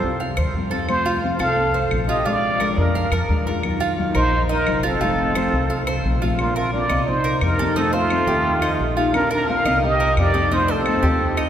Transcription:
Already playing: A4 C5
0.03 C2 G3 C4 F4
0.20 F5, muted nylon-string guitar stroke
0.37 D#2 C5, claves
0.54 F2 F3 G3 C4 F4
0.71 G3 C4 F4 A4
0.88 C3 F3 A3 C4 F4 C5, claves
1.06 F4
1.22 C3 F3 A3 C4 F4
1.39 C2 A3 C4 F4 A4 F5, claves
1.57 muted nylon-string guitar stroke
1.74 C5
1.91 A#1 F3 A3 C4 F4, claves
2.08 F3 A3 C4 F4 G4 D#5
2.25 F3 G#3 D4 F4 D5
2.60 F3 G#3 D4 F4 A#4, claves
2.77 F2 G#3 D4 F4 A#4
2.94 F5, muted nylon-string guitar stroke
3.12 F2 A#4, claves
3.29 D#2 F3 G#3 D4 F4
3.46 G#3 D4 F4 A#4
3.63 D#3 F#3 A#3 F4, claves
3.80 F4
3.97 D#3 F#3 A#3 F4
4.13 A#1 F#3 A#3 D#4 F4 A#4 C5, claves
4.31 muted nylon-string guitar stroke
4.49 D#4 A#4 D#5
4.66 F1 D#3 F#3 A#3 F4, claves
4.83 F#3 A#3 C4 F4 A4
5.01 C3 F3 A3 C4 F4
5.35 C3 F3 A3 C4 F4 C5, claves
5.52 C2 A3 C4 F4
5.70 F5, muted nylon-string guitar stroke
5.87 C2 C5, claves
6.04 A#1 F3 A3 C4 F4
6.22 F3 A3 C4 F4
6.39 D3 A#3 C4 F4, claves
6.55 A3 F4 A#4
6.73 D3 A#3 C4 F4 D5
6.89 C2 A#3 C4 F4 D#5, claves
7.06 D#4 C5, muted nylon-string guitar stroke
7.24 A#4
7.41 F2 D#3 A#3 C4 D#4 G4 A#4, claves
7.59 D#3 A#3 C4 G4 A4
7.75 C3 D#3 A3 C4 D#4 F4 A4
7.93 A3 F4 C5
8.10 C3 D#3 A3 C4 F4, claves
8.27 D#2 A3 C4 F4 G4
8.45 muted nylon-string guitar stroke
8.62 D#4, claves
8.79 A#1 D#3 A#3 D#4 G4
8.96 A#3 D#4 F4 G4
9.13 D3 A#3 C4 D4 F4 A#4, claves
9.31 D4 A#4
9.48 D3 A#3 C4 F4 A#4 F5
9.65 C2 A#3 C4 F4 D#5, claves
9.83 G4 D#5, muted nylon-string guitar stroke
10.00 A#4
10.17 F2 D#3 A#3 C4 G4 D5, claves
10.34 D#3 A#3 C4 G4 A4
10.51 C3 D#3 A3 C4 D#4 F4 C5
10.68 C4 A4 C5
10.86 C3 D#3 A3 C4 F4, claves
11.02 D#2 A3 C4 F4 G4
11.19 muted nylon-string guitar stroke
11.37 D#4, claves

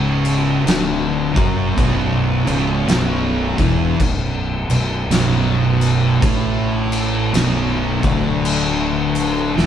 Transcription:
Already playing: C#1 C#2 C#3
0.25 crash
0.66 D1 D2 D3, snare, crash
1.36 F#1 F#2 F#3, kick, crash
1.77 B0 B1 B2, kick, crash
2.46 C#1 C#2 C#3, crash
2.88 B0 B1 B2, snare, crash
3.58 E1 E2 E3, kick, crash
4.00 B0 B1, kick, crash
4.69 B0 B1, crash
5.10 B0 B1 B2, snare, crash
5.81 crash
6.22 A1 A2 A3, kick, crash
6.92 crash
7.33 B0 B1 B2, snare, crash
8.03 D1 D2 D3, kick, crash
8.45 crash
9.15 crash
9.56 E1 E2 E3, snare

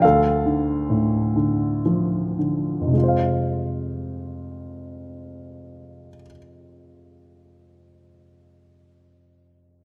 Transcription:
0.02 D2 A4 F5
0.46 D3
0.90 A2
1.36 D3
1.86 F3
2.39 D3
2.81 F2
2.87 C3
2.92 G#3
2.97 F4
3.03 C5
3.08 F5

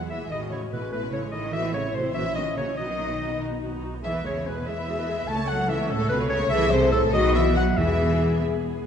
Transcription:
Already playing: E2 F#3 G#4 F#5
0.00 G#3 G#4
0.10 E3 B3 E4 E5
0.21 G#3 G#4
0.30 A1 D#3 A3 E4 F#4 D#5
0.41 G#3 C#4
0.51 C#3 A3 E4 C#5
0.62 G#3 C#4
0.71 B2 A3 E4 B4
0.82 G#3 C#4
0.92 B2 A3 E4 B4
1.03 G#3 C#4
1.12 C#3 A3 E4 C#5
1.23 G#3 C#4
1.32 D#3 A3 E4 D#5
1.43 G#3 C#4
1.53 E3 A3 F#4 E5
1.64 C4 E4
1.74 C#3 A3 F#4 C#5
1.84 C4 E4
1.93 C3 A3 F#4 C5
2.04 C4 E4
2.13 A#1 E3 A#3 C#4 F#4 E5
2.25 C#4 E4
2.35 D#3 A#3 F#4 D#5
2.45 C#4 E4
2.56 C#3 A#3 F#4 C#5
2.66 C#4 E4
2.76 B1 D#3 D#4 F#4 D#5
2.88 B3 D#4
2.99 D#4 F#4
3.10 B3 D#4
3.20 D#4 F#4
3.30 B3 D#4
3.41 D#4 F#4
3.52 B3 D#4
3.62 D#4 F#4
3.71 B3 D#4
3.83 D#4 F#4
3.93 B3 D#4
4.03 E2 E3 G#3 G#4 E5
4.14 B3 B4
4.24 C#3 G#3 G#4 C#5
4.35 B3 B4
4.46 B2 G#3 G#4 B4
4.57 B3 B4
4.67 E3 G#3 E4 G#4 E5
4.78 B3 B4
4.87 G#3 F#4 G#4
4.98 B3 B4
5.07 G#3 G#4
5.19 B3 B4
5.28 C#2 A3 C#4 A4 A5
5.39 A3 C#5
5.48 F#3 C#4 A4 F#5
5.58 A3 C#5
5.69 E3 C#4 A4 E5
5.78 A3 C#5
5.89 A2 C#4 A4
5.99 A3 C#5
6.09 B2 C#4 A4 B4
6.19 A3 C#5
6.29 C#3 C#4 A4 C#5
6.39 A3 C#5
6.50 C2 E3 A3 G#4 A4 E5
6.71 C3 C5
6.92 A2 A4
7.12 B1 D#3 B3 F#4 D#5
7.34 E3 E5
7.54 F#3 F#5
7.77 E2 E3 B3 G#4 E5

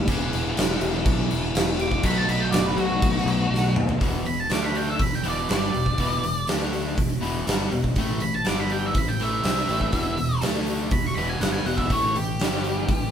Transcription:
0.07 E1 E3 B3 D4 G#4, kick, crash
0.33 E1, crash
0.57 E1, snare, crash
0.81 E1, crash
1.06 B1, kick, crash
1.31 E1, crash
1.55 E1, snare, crash
1.79 D6, crash
1.91 kick
2.03 B1 B2 F#3 A3 D#4 F#4 B5, kick, crash
2.18 A5
2.28 B1 B5, crash
2.40 G5
2.51 F#1 D5, snare, crash
2.65 B4
2.77 B1 F#4, crash
3.02 B1, kick, crash
3.17 snare
3.26 B1, crash
3.51 B1, snare
3.76 D#2, mid tom
3.89 floor tom
4.00 E1 E2 B2 E3, kick, open hi-hat
4.26 E1 E2 B2 B5, open hi-hat
4.40 A5
4.50 D2 D3 A3 D4 D6, snare, open hi-hat
4.65 B5
4.75 G5, open hi-hat
4.90 E5
4.98 E1 E2 B2 B5, kick, open hi-hat
5.13 G5, snare
5.23 E1 E2 B2 E3, open hi-hat
5.28 D5
5.49 G1 G2 D3 G3 D5, snare, open hi-hat
5.73 E1 E2 B2, open hi-hat
5.86 kick
5.98 E1 E2 B2 E3, kick, open hi-hat
6.23 E1 E2 B2, open hi-hat
6.47 D2 D3 A3 D4, snare, open hi-hat
6.73 open hi-hat
6.96 E1 E2 B2, kick, open hi-hat
7.21 E1 E2 B2 E3, open hi-hat
7.47 G1 G2 D3 G3, snare, open hi-hat
7.72 E1 E2 B2, open hi-hat
7.84 kick
7.96 A1 A2 E3 A3, kick, open hi-hat
8.20 A1 A2 E3 B5, open hi-hat
8.35 A5
8.45 G1 G2 D3 G3 D6, snare, open hi-hat
8.61 B5
8.70 G5, open hi-hat
8.86 E5
8.95 A1 A2 E3 B5, kick, open hi-hat
9.09 G5
9.20 A1 A2 E3 A3 E5, open hi-hat
9.44 C2 C3 G3 C4 E5, snare, open hi-hat
9.69 A1 A2 E3 A3, open hi-hat
9.81 kick
9.92 E1 E2 B2 E3, kick, open hi-hat
10.17 E1 E2 B2, open hi-hat
10.41 D2 D3 A3 D4, snare, open hi-hat
10.67 open hi-hat
10.91 E1 E2 B2 B5, kick, open hi-hat
11.06 C#6, snare
11.15 E1 E2 B2 E3 B5, open hi-hat
11.29 G#5
11.40 G1 G2 D3 G3 F#5, snare, open hi-hat
11.52 G#5
11.64 E1 E2 B2 E3 F#5, open hi-hat
11.77 E5, kick
11.90 A1 A2 E3 A3 C#5, kick, open hi-hat
12.15 A1 A2 E3 G4, open hi-hat
12.39 G1 G2 D3 G3, snare, open hi-hat
12.64 open hi-hat
12.88 A1 A2 E3, kick, open hi-hat

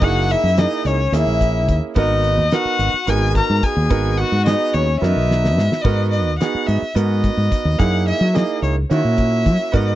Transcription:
0.01 F#1 A#3 D#4 E4 F#4 G#4 F#5, kick, closed hi-hat
0.30 E4 E5, closed hi-hat
0.44 F#2
0.57 A#3 D#4 E4 G#4 D#5, snare, closed hi-hat
0.85 C#2 C#4 C#5, closed hi-hat
1.12 D#2 A#3 C#4 E4 G#4 E5, snare, closed hi-hat
1.17 E4
1.27 A#1
1.41 kick, closed hi-hat
1.69 D#2, kick, closed hi-hat
1.95 G#1 B3 D#4 F#4 A#4 D#5, kick, closed hi-hat
2.24 closed hi-hat
2.38 D#2
2.51 B3 D#4 F#4 A#4 F#5, snare, closed hi-hat
2.65 muted fretless electric bass stroke
2.79 G#1, closed hi-hat
2.94 muted fretless electric bass stroke
3.07 G#1 B3 D#4 F#4 G#4 A#4 G#5, closed hi-hat
3.35 A#4 A#5, kick, closed hi-hat
3.50 G#2
3.63 G#4 G#5, kick, closed hi-hat
3.77 D#2
3.90 G#1 B3 D#4 F#4 A#4, kick, closed hi-hat
4.18 F#4 F#5, closed hi-hat
4.32 G#2
4.45 B3 D#4 F#4 G#4 D#5, snare, closed hi-hat
4.74 D#2 C#4 C#5, closed hi-hat
5.00 F#2 D#3 B3 F#4 A#4 E5, snare
5.06 D#4
5.16 B1
5.31 snare
5.45 snare
5.57 G#2, snare
5.72 snare
5.82 G#2 B3 D#4 F#4 A#4 D#5, kick, crash
6.10 D#5, closed hi-hat
6.27 D#2
6.39 B3 D#4 F#4 G#4 F#5, snare, closed hi-hat
6.55 muted fretless electric bass stroke
6.67 G#2 E5, closed hi-hat
6.82 muted fretless electric bass stroke
6.95 G#2 B3 D#4 F#4 A#4 D#5, closed hi-hat
7.24 kick, closed hi-hat
7.37 G#2
7.52 kick, snare, closed hi-hat
7.65 D#2
7.78 F#2 A#3 D#4 E4 G#4 F#5, kick, closed hi-hat
8.08 E5, closed hi-hat
8.21 F#3
8.34 A#3 D#4 E4 G#4 D#5, snare, closed hi-hat
8.62 C#2 C#5, closed hi-hat
8.89 D#3 A#3 C#4 E4 F#4 E5, closed hi-hat
9.05 A#2
9.18 kick, closed hi-hat
9.46 F#3, kick, closed hi-hat
9.72 G#2 B3 D#4 F#4 A#4 D#5, kick, closed hi-hat

